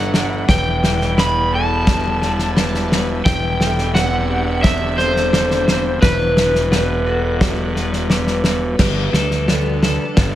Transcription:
Already playing: G1 G3 B3 D4 A4 B4 E5 F#5
0.14 D4, snare
0.48 E1 E2 G3 E4 B4 G5, kick, snare
0.84 snare
1.01 snare
1.18 B3 B4 B5, snare
1.53 F#4 A4 A5
1.87 G3, kick, snare
2.22 B3, snare
2.39 snare
2.57 G3 B4, snare
2.74 snare
2.91 B3, snare
3.25 E1 E3 C4 D4 B4 G5, kick, snare
3.60 A4, snare
3.78 snare
3.94 C4 B4 F#5, snare
4.30 G4
4.63 D3 E5, kick, snare
4.98 C4 A4 C5, snare
5.16 snare
5.33 D3, snare
5.51 snare
5.68 C4, snare
6.02 E1 E2 F#4 B4, kick, snare
6.37 snare
6.55 snare
6.72 B3 B4, snare
7.06 F#4 A4
7.41 G3, kick, snare
7.76 B3, snare
7.93 snare
8.10 G3 B4, snare
8.27 snare
8.44 B3, snare
8.79 G1 G3 D4 A4 B4 D5, kick, snare, crash
9.13 D2 A4, snare
9.31 snare
9.48 B3 A4, snare
9.83 A4 B4, snare
10.17 G1 B3, kick, snare

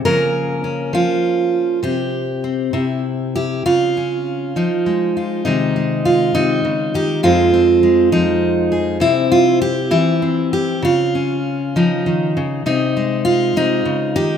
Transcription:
0.05 C#3 F3 A#3 C#4 A#4
0.64 C#4
0.93 F3 F4
1.83 C3 G4
2.44 C4
2.73 C3 E4
3.36 E4 G4
3.66 C#3 F4
3.97 C#4
4.56 F3 D#4
4.86 G#3
5.17 F4
5.45 C3 D#3 G#3 D#4
5.76 G#3
6.05 F4
6.35 C3 D#4
6.65 C#3
6.94 D#3 G4
7.23 F2 F3 G#3 C4 F4
7.54 C4
7.83 G#3
8.12 F3 D#4
8.72 G#4
9.00 C3 C4 E4
9.32 F4
9.62 G4
9.91 E3 E4
10.22 C4
10.53 G4
10.82 C#3 F4
11.15 C#4
11.76 F3 D#4
12.06 D#3
12.37 C#3
12.66 C3 D#4
12.97 G#3
13.25 F4
13.56 C3 D#4
13.85 C#3
14.16 D#3 G4

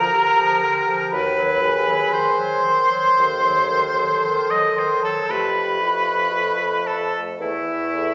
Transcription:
Already playing: F3 F4 A#4 A#5
0.11 D3 G4
0.37 F3
0.63 D3
0.87 F3
1.11 D#2 D#3 F#4 B4 B5
1.37 F#3
1.62 D#3 G#4
1.87 F#3
2.11 D#3 C5 C6
2.38 F#3
2.64 D#3
2.91 F#3
3.17 D#2 D#3 A4
3.44 F#3
3.71 D#3
3.98 F#3
4.25 D#3
4.50 F#3 D#5 D#6
4.76 D#3 C5 C6
5.03 F#3 A4 A5
5.29 F2 A3 G4 B4 B5
5.82 F4
6.33 A4
6.86 A4 A5
7.40 E2 A3 E4 B4 E5
7.95 A4

